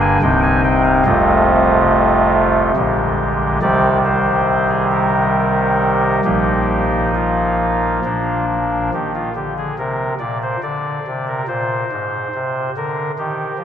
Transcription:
Already playing: G1 G2 D3 A#3 D4
0.01 G#5
0.22 C1 C2 C3 C4 D#4 G5
0.43 G#5
0.64 G5
0.85 F5
1.05 F1 C2 F2 C3 A3 F4 D#5
2.76 A#1 A#2 D3 G#3 G4
3.62 C2 C3 D#3 G3 G4 D5
4.05 C5
4.69 G#4
4.92 A#4
6.25 A#1 A#2 F3 A#3 D#4 G4
7.15 F4
8.04 A#1 A#2 F3 A#3 D4
8.93 D#3 G4
9.15 F4
9.35 D3 G4
9.58 G#4
9.79 C3 A#4
10.20 A#2 D5
10.42 C5
10.63 D3 D5
11.07 C3
11.28 A#4
11.48 A#2 C5
11.92 G#2
12.35 C3
12.77 D3 A#4
13.18 D#3 G4
13.58 F3

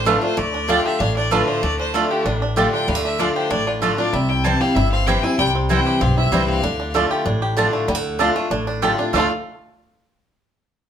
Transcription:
Already playing: A1 A2 D4
0.05 D3 A3 D4 F4 B4 D5 A5
0.21 D4 F4 C5
0.37 D2 D3 A3 D5
0.54 D4
0.68 D3 A3 D4 F4 D5 G5 A5
0.85 G4 E5
1.00 A1 A2 D4 F5
1.16 D4 D5
1.31 D3 A3 D4 F4 B4 D5 A5
1.48 D4 C5
1.63 D2 D3 A3 D5
1.79 D4 C5
1.94 D3 A3 D4 F4 A4 D5 A5
2.10 G4
2.25 A1 A2 D4
2.42 D4
2.56 D3 A3 D4 F4 G4 D5 A5
2.73 D4 G5
2.88 D2 D3 G3 F5
2.95 A3
3.05 D4 E5
3.19 D3 A3 D4 F4 D5 A5
3.36 G4 C5
3.51 A1 A2 D4 D5
3.67 D4 F4
3.82 D3 A3 D4 F4 A4 D5 A5
3.98 D4 F4 D5
4.13 C2 C3 G3 E5
4.29 E4 G5
4.44 E3 G3 C4 E4 C5 G5 A5
4.61 C4 E4 G4 F5
4.75 G1 G2 E4 E5
4.92 C4 F5
5.07 E3 G3 C4 E4 G4 C5 G5
5.23 C4 E4 G#5
5.38 C2 C3 G3 G5
5.55 C4
5.69 E3 G3 C4 E4 C5 G5
5.86 G4
6.01 B1 G2 C4 F5
6.18 E4 E5
6.32 C2 E3 G3 C4 E4 C5 G5
6.48 C4 F5
6.63 D2 D3 D4
6.80 D4
6.94 D3 A3 D4 F4 D5 A5
7.11 G4
7.26 A1 A2 D4
7.42 G4
7.57 D3 A3 D4 F4 D5 A5
7.73 A3
7.88 D2 D3 G3
7.95 A3
8.19 D3 A3 D4 F4 D5 A5
8.36 A3 D4 F4
8.51 A1 A2 D4
8.67 D4
8.82 D3 A3 D4 F4 G4 D5 A5
8.98 D4 F4
9.13 D2 D3 A3 D4 F4 D5 F5 A5
9.18 F4 A4

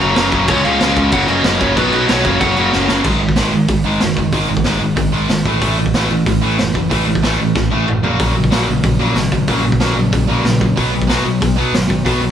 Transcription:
0.00 F#1 F#2 C#3 F#3 A#3 C#4 A#5, crash
0.16 F#1 F#2 C#3 F#3 A#3 C#4, snare, crash
0.32 F#1 F#2 C#3 F#3 A#3 C#4, kick, crash
0.48 C#2 C#3 F3 G#3 C#4 C#5, kick, crash
0.64 C#2 C#3 F3 G#3 C#4 F5, crash
0.80 C#2 C#3 F3 G#3 C#4, snare, crash
0.96 C#2 C#3 F3 G#3 C#4, kick, crash
1.12 F#1 F#2 C#3 F#3 A#3 C#4 F#5, kick, crash
1.28 F#1 F#2 C#3 F#3 A#3 C#4 D#5, crash
1.44 F#1 F#2 C#3 F#3 A#3 C#4, snare, crash
1.60 F#1 F#2 C#3 F#3 A#3 C#4 C#5, kick, crash
1.76 B1 B2 F#3 B3 D#4 B4, kick, crash
1.92 B1 B2 F#3 B3 D#4, crash
2.08 B1 B2 F#3 B3 D#4 C#5, snare, crash
2.25 F#1 F#2 C#3 F#3 A#3 C#4, kick, crash
2.41 F#1 F#2 C#3 F#3 A#3 C#4 F#5, kick, crash
2.57 F#1 F#2 C#3 F#3 A#3 C#4, crash
2.72 F#1 F#2 C#3 F#3 A#3 C#4, snare
2.88 F#1 F#2 C#3 F#3 A#3 C#4, snare
3.04 G#1 G#2 D#3 G#3, kick, crash
3.20 G#2 D#3
3.29 kick
3.36 G#1 G#2 D#3 G#3, snare, open hi-hat
3.52 G#1 G#2 D#3
3.68 G#1 G#2 D#3, kick, open hi-hat
3.84 G#1 G#2 D#3 G#3
4.00 F#1 G#2 D#3, snare, open hi-hat
4.17 F#1 G#2 D#3, kick
4.32 G#1 G#2 D#3 G#3, kick, open hi-hat
4.49 G#1 G#2 D#3
4.57 kick
4.64 G#1 G#2 D#3 G#3, snare, open hi-hat
4.80 G#1 G#2 D#3
4.96 G#1 G#2 D#3, kick, open hi-hat
5.12 G#1 G#2 D#3 G#3
5.29 G#1 G#2 D#3, snare, open hi-hat
5.45 A1 A2 E3 A3, kick
5.61 A1 A2 E3 A3, kick, open hi-hat
5.78 A2 E3
5.86 kick
5.94 A1 A2 E3 A3, snare, open hi-hat
6.10 A1 A2 E3
6.26 A1 A2 E3, kick, open hi-hat
6.42 A1 A2 E3 A3
6.58 F#1 A2 E3, snare, open hi-hat
6.74 F#1 A2 E3, kick
6.90 A1 A2 E3 A3, kick, open hi-hat
7.06 A1 A2 E3
7.15 kick
7.22 A1 A2 E3 A3, snare, open hi-hat
7.38 A1 A2 E3
7.55 A1 A2 E3, kick, snare
7.71 A1 A2 E3 A3, high tom
7.87 A1 A2 E3, mid tom
8.03 A#1 F#2 A#2 C#3 F#3 A#3, floor tom
8.19 A#1 F#2 A#2 C#3 F#3 A#3, kick, open hi-hat
8.34 F#2 A#2 C#3 F#3
8.44 kick
8.50 A#1 F#2 A#2 C#3 F#3 A#3, snare, open hi-hat
8.67 A#1 F#2 A#2 C#3 F#3
8.83 A#1 F#2 A#2 C#3 F#3, kick, open hi-hat
8.99 A#1 F#2 A#2 C#3 F#3 A#3
9.15 G#1 F#2 A#2 C#3 F#3, snare, open hi-hat
9.32 G#1 F#2 A#2 C#3 F#3, kick
9.47 A#1 F#2 A#2 C#3 F#3 A#3, kick, open hi-hat
9.64 A#1 F#2 A#2 C#3 F#3
9.72 kick
9.80 A#1 F#2 A#2 C#3 F#3 A#3, snare, open hi-hat
9.96 A#1 F#2 A#2 C#3 F#3
10.12 A#1 F#2 A#2 C#3 F#3, kick, open hi-hat
10.28 A#1 F#2 A#2 C#3 F#3 A#3
10.44 A#1 F#2 A#2 C#3 F#3, snare, open hi-hat
10.61 F#2 A#2 C#3 F#3, kick
10.76 B1 B2 F#3 B3, kick, open hi-hat
10.92 B2 F#3
11.02 kick
11.07 B1 B2 F#3 B3, snare, open hi-hat
11.24 B1 B2 F#3
11.41 B1 B2 F#3, kick, open hi-hat
11.56 B1 B2 F#3 B3
11.73 G#1 B2 F#3, snare, open hi-hat
11.88 G#1 B2 F#3, kick
12.05 B1 B2 F#3 B3, kick, open hi-hat
12.21 B1 B2 F#3

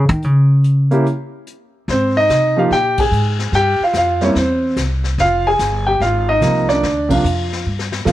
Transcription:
0.09 D#3, closed hi-hat
0.22 C#3, closed hi-hat
0.64 closed hi-hat
0.91 A#3 C#4 E4 G4, closed hi-hat
1.06 closed hi-hat
1.47 closed hi-hat
1.88 G#2 C4 C5, brush sweep, kick, snare
2.17 D#4 D#5
2.29 C3, kick, snare, hi-hat pedal
2.57 F3 A#3 D#4 F4 G4 F5
2.71 A#2 G4 G5, brush sweep, kick, snare
2.98 G#4 G#5, kick, ride
3.11 G#2, hi-hat pedal
3.39 snare
3.52 G2 G4 G5, brush sweep, kick, snare
3.80 F4 F5, muted upright bass stroke
3.93 F2 F5, kick, snare, hi-hat pedal
3.98 F4
4.21 G3 A#3 C4 C#4 E4 C#5, snare
4.35 E2 C4 C5, brush sweep, kick, snare
4.76 C2, kick, snare, hi-hat pedal
5.04 snare
5.18 F1 F4 F5, brush sweep, kick, snare
5.47 G#4 G#5
5.59 G1, kick, snare, hi-hat pedal
5.87 G4 G5
6.00 G#1 F4 F5, brush sweep, kick, snare
6.29 D#4 D#5
6.40 C2 C3 F3 A#3 D#4, kick, snare, hi-hat pedal
6.69 D4 D5, snare
6.83 D2, brush sweep, kick, snare
7.09 C3 F3 A#3 D4 F5, kick, ride
7.14 F4
7.24 F2, hi-hat pedal
7.52 snare
7.66 G2
7.79 snare
7.92 snare
8.05 B2 F3 A3 B3 F4, snare, hi-hat pedal

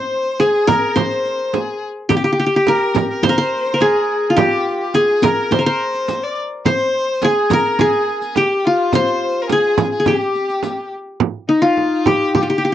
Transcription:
Already playing: C5
0.40 G#4, riq, frame drum
0.67 A#4, riq, frame drum
0.96 C5, riq, frame drum
1.11 riq
1.25 riq
1.53 G#4, riq, frame drum
2.09 G4, riq, frame drum
2.17 G4
2.24 G4, riq
2.33 G4
2.40 G4
2.46 G4
2.56 G4
2.67 A#4, riq, frame drum
2.95 riq, frame drum
3.11 A#4
3.23 C5, riq, frame drum
3.29 A#4
3.38 C5
3.66 riq
3.74 A#4
3.80 G#4, riq, frame drum
4.30 F4
4.37 G4, riq, frame drum
4.51 riq
4.81 G4
4.94 G#4, riq, frame drum
5.22 A#4, riq, frame drum
5.51 C5, riq, frame drum
5.59 A#4
5.66 C5
5.95 riq
6.08 riq, frame drum
6.24 D5
6.65 C5, riq, frame drum
6.79 riq
7.22 G#4, riq, frame drum
7.50 A#4, riq, frame drum
7.79 G#4, riq, frame drum
8.21 G#4, riq
8.35 G4, riq, frame drum
8.65 F4
8.92 C5, riq, frame drum
9.07 riq
9.42 A#4
9.48 G#4, riq, frame drum
9.52 G#4
9.78 riq, frame drum
9.92 G#4
10.00 G#4
10.05 G4 G#4, riq, frame drum
10.16 G4
10.21 riq
10.35 riq
10.50 riq
10.63 riq, frame drum
11.20 frame drum
11.49 D#4
11.62 F4
11.77 frame drum
12.06 G4, frame drum
12.35 G4, frame drum
12.42 F4 G4
12.48 G4
12.58 G4
12.65 G4

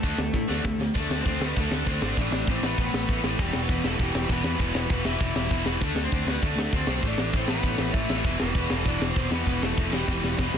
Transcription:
Already playing: A3 A4
0.03 D2 D3 A3 D4, kick, open hi-hat
0.18 D2 D3 A3, snare
0.33 A2 D3 A3, kick, snare
0.48 D2 D3 A3 D4, snare
0.64 D2 D3 A3, kick, snare
0.78 D2 D3 A3, snare
0.94 D2 D3 A3 D4, kick, crash
1.00 A4
1.09 D2, snare
1.21 C4 C5
1.25 D2 D3 A3 D4, kick, crash
1.41 D2 D3 A3 B3 D4, snare
1.47 B4
1.57 D2 D3 A3 D4 A4, kick, crash
1.71 D2, snare
1.86 D2 D3 A3 C4 D4, kick, crash
1.91 C5
2.02 G#1 D3 A3 D4, snare
2.17 A1 A2 E3 A3 D4, kick, crash
2.21 D5
2.31 A1, snare
2.47 A1 A2 E3 A3 C4, kick, crash
2.51 C5
2.62 A1 A2 E3 A3 B3 B4, snare
2.78 A1 A2 E3 A3, kick, crash
2.93 A1, snare
3.08 A1 A2 E3 A3, kick, crash
3.24 A1 A2 E3 A3, snare
3.38 E1 E2 B2 E3 G3 G4, kick, crash
3.53 E1, snare
3.63 B3 B4
3.69 E1 E2 B2 E3, kick, crash
3.83 E1 E2 B2 E3, snare
3.87 A3 A4
3.99 E1 E2 B2 E3 G3, kick, crash
4.03 G4
4.14 E1, snare
4.29 E1 E2 B2 E3 B3, kick, crash
4.33 B4
4.43 E2 B2 E3, snare
4.59 E1 E2 B2 E3 B3 B4, kick, crash
4.74 E1, snare
4.90 E1 E2 B2 E3 B3 B4, kick, crash
5.04 E1 E2 B2 E3 E4 E5, snare
5.20 E1 E2 B2 E3, kick, crash
5.35 E1, snare
5.50 E1 E2 B2 E3, kick, crash
5.65 E1 E2 B2 E3, snare
5.81 D2 D3 A3 D4 A4, kick, crash
5.94 D2, snare
6.04 C4 C5
6.12 D2 D3 A3 D4, kick, crash
6.25 D2 D3 A3 D4, snare
6.31 B3 B4
6.42 D2 D3 A3 D4 A4, kick, crash
6.56 D2, snare
6.72 D2 D3 A3 D4 C5, kick, crash
6.77 C4
6.87 B1 D3 A3 D4, snare
7.02 A1 A2 E3 A3, kick, crash
7.08 D4 D5
7.18 A1, snare
7.33 A1 A2 E3 A3, kick, crash
7.37 C4 C5
7.48 A1 A2 E3 A3 B3 B4, snare
7.62 A1 A2 E3 A3, kick, crash
7.78 A1, snare
7.93 A1 A2 E3 A3 E4 E5, kick, crash
8.09 A1 A2 E3 A3, snare
8.18 E4 E5
8.24 E1 E2 B2 E3, kick, crash
8.40 E1 B3 B4, snare
8.55 E1 E2 B2 E3, kick, crash
8.70 E1 E2 B2 E3, snare
8.84 E1 E2 B2 E3 D5, kick, crash
8.89 D4
9.00 E1, snare
9.10 C4 C5
9.15 E1 E2 B2 E3, kick, crash
9.30 E2 B2 E3 B4, snare
9.35 B3
9.46 E1 E2 B2 E3, kick, crash
9.60 E1 A4, snare
9.64 A3
9.77 E1 E2 B2 E3, kick, crash
9.91 E1 E2 B2 E3 G4, snare
9.97 G3
10.08 E1 E2 B2 E3, kick, snare
10.22 E1, snare
10.38 E1 E2 B2 E3, kick, snare
10.54 E1, snare

